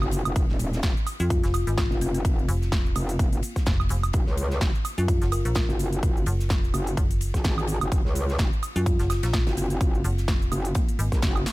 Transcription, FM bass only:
1.20 1.41 F2 loud
1.44 1.65 F1 loud
1.67 1.89 G#1 loud
2.48 2.94 F1 loud
3.67 3.89 F1 loud
3.90 4.12 F1 loud
4.98 5.19 F#2 loud
5.22 5.43 F#1 loud
5.45 5.67 A#1 loud
6.27 6.72 F#1 loud
6.97 7.32 F#1 medium
8.76 8.97 F#2 loud
9.00 9.21 F#1 loud
9.23 9.45 A#1 loud
10.04 10.50 F#1 loud
10.99 11.10 G#1 loud

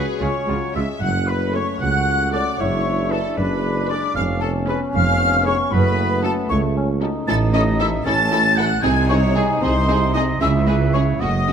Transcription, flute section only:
0.20 0.74 C#6 medium
0.75 0.81 E6 medium
1.01 1.28 F#6 medium
1.28 1.55 B5 medium
1.54 1.81 C#6 medium
1.79 2.32 F#6 medium
2.32 2.59 D6 medium
2.60 3.12 C#6 medium
3.11 3.17 A5 medium
3.37 3.88 B5 medium
3.89 4.16 D6 medium
4.16 4.22 F6 medium
4.41 4.47 A5 medium
4.68 4.74 B5 medium
4.94 5.45 F6 loud
5.46 5.72 C#6 medium
5.72 6.24 B5 medium
6.25 6.31 A5 medium
6.50 6.56 C#6 medium
7.28 7.34 A6 loud
7.55 7.61 D#6 medium
7.80 7.86 E6 medium
8.06 8.57 A6 loud
8.58 8.84 F#6 loud
8.83 9.10 G#6 medium
9.09 9.15 C#6 medium
9.35 9.61 G#5 medium
9.61 10.14 C6 loud
10.14 10.20 D#6 medium
10.42 10.48 E6 medium
10.67 10.73 B5 medium
10.93 10.99 C#6 medium
11.20 11.53 D#6 medium

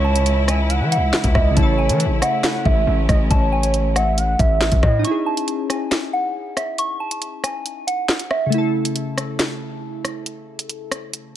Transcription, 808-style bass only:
0.00 0.82 C#2 loud
0.81 0.98 E3 loud
0.97 1.12 C#2 loud
1.24 1.35 C#2 loud
1.35 1.56 C#2 loud
1.57 1.91 A1 loud
1.89 2.07 E3 loud
2.06 2.21 A1 loud
2.65 2.86 A1 loud
2.87 3.08 A1 loud
3.09 3.30 A1 loud
3.31 4.35 A1 loud
4.39 4.71 A1 loud
4.72 4.82 A1 loud
4.83 5.04 A2 loud

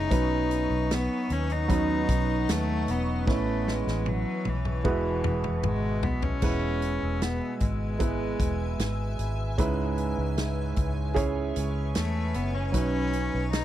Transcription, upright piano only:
0.00 0.12 G#3 medium
0.00 0.11 B3 medium
0.00 0.11 C#4 medium
0.00 0.13 E4 medium
0.00 0.13 G#4 medium
0.11 1.61 F#3 medium
0.11 1.61 B3 medium
0.11 1.61 C#4 medium
0.11 1.61 D#4 medium
0.11 1.62 B4 medium
1.68 3.19 F#3 medium
1.68 3.19 B3 medium
1.68 3.19 C#4 medium
1.68 3.19 D#4 medium
1.68 3.19 B4 medium
3.27 4.77 E3 medium
3.27 4.77 B3 medium
3.27 4.77 C#4 medium
3.27 4.77 E4 medium
3.27 4.77 B4 medium
4.84 5.99 B2 medium
4.84 6.34 G#3 medium
4.84 6.35 B3 medium
4.84 6.35 E4 medium
4.84 6.35 F#4 medium
4.84 6.35 B4 medium
6.42 7.57 B2 medium
6.42 7.92 G#3 medium
6.42 7.92 B3 medium
6.42 7.93 E4 medium
6.42 7.93 B4 medium
7.99 9.50 G#3 medium
7.99 9.50 B3 medium
7.99 9.50 E4 medium
7.99 9.51 B4 medium
9.58 10.73 G#2 medium
9.58 11.08 G#3 medium
9.58 11.08 C#4 medium
9.58 11.09 E4 medium
9.58 11.09 B4 medium
11.14 12.66 C#4 medium
11.14 12.66 E4 medium
11.14 12.65 G#4 medium
11.14 12.66 C#5 loud
12.72 13.65 F#3 medium
12.72 13.65 C#4 medium
12.72 13.65 D#4 medium
12.72 13.65 B4 medium

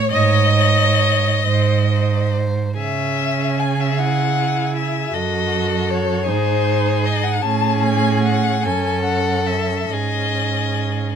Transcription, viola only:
0.12 2.08 D#5 medium
2.79 4.00 C#4 medium
3.99 5.13 E4 medium
5.14 6.26 F#4 medium
6.29 7.42 D#4 medium
7.45 8.60 C#4 medium
8.65 9.89 C#4 medium
9.91 11.15 C#4 medium

